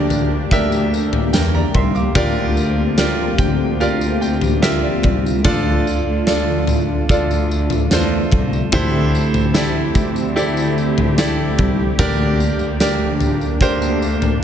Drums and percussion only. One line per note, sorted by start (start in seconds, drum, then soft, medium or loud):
0.10 floor tom medium
0.10 tambourine soft
0.51 kick medium
0.51 tambourine soft
0.72 tambourine soft
0.94 tambourine soft
1.13 floor tom medium
1.33 snare loud
1.33 tambourine medium
1.74 kick medium
1.74 floor tom medium
1.96 tambourine soft
2.15 kick loud
2.15 floor tom loud
2.15 tambourine soft
2.57 tambourine soft
2.98 snare loud
2.98 tambourine medium
3.38 kick medium
3.38 floor tom medium
3.38 tambourine soft
3.81 tambourine soft
4.01 tambourine soft
4.22 tambourine soft
4.41 floor tom medium
4.41 tambourine soft
4.63 snare loud
4.63 tambourine medium
5.03 kick medium
5.03 floor tom medium
5.26 tambourine soft
5.45 kick loud
5.45 floor tom loud
5.45 tambourine soft
5.87 tambourine soft
6.27 snare loud
6.27 tambourine medium
6.67 floor tom medium
6.67 tambourine soft
7.09 kick medium
7.09 tambourine soft
7.31 tambourine soft
7.51 tambourine soft
7.70 floor tom medium
7.70 tambourine soft
7.91 snare loud
7.91 tambourine medium
8.31 kick medium
8.31 floor tom medium
8.53 tambourine soft
8.72 kick loud
8.72 floor tom loud
8.72 tambourine soft
9.15 tambourine soft
9.34 floor tom medium
9.34 tambourine soft
9.54 snare loud
9.54 tambourine medium
9.95 kick medium
9.95 tambourine soft
10.16 tambourine soft
10.37 tambourine soft
10.57 tambourine soft
10.78 tambourine soft
10.98 floor tom medium
11.18 snare loud
11.18 tambourine medium
11.59 kick medium
11.59 floor tom medium
11.99 kick loud
11.99 floor tom loud
11.99 tambourine soft
12.40 tambourine soft
12.59 tambourine soft
12.80 snare loud
12.80 tambourine medium
13.20 floor tom medium
13.20 tambourine soft
13.41 tambourine soft
13.61 kick medium
13.61 tambourine soft
13.82 tambourine soft
14.02 tambourine soft
14.22 floor tom medium
14.22 tambourine soft